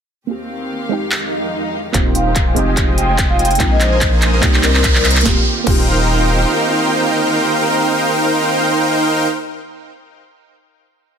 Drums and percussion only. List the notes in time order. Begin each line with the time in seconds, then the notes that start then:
1.12 finger snap, clap
1.94 kick, clap, closed hi-hat
2.15 closed hi-hat
2.36 kick, clap, closed hi-hat
2.56 closed hi-hat
2.77 kick, clap, closed hi-hat
2.98 closed hi-hat
3.19 kick, clap, closed hi-hat
3.39 closed hi-hat
3.45 closed hi-hat
3.51 closed hi-hat
3.55 closed hi-hat
3.60 kick, clap, closed hi-hat
3.81 clap, closed hi-hat
4.01 kick, clap, closed hi-hat
4.22 clap, closed hi-hat
4.43 kick, clap, closed hi-hat
4.54 clap
4.63 clap, closed hi-hat
4.75 clap
4.84 kick, clap, closed hi-hat
4.95 clap
5.05 clap, closed hi-hat
5.11 closed hi-hat
5.16 clap, closed hi-hat
5.21 closed hi-hat
5.25 kick, snare
5.67 kick, crash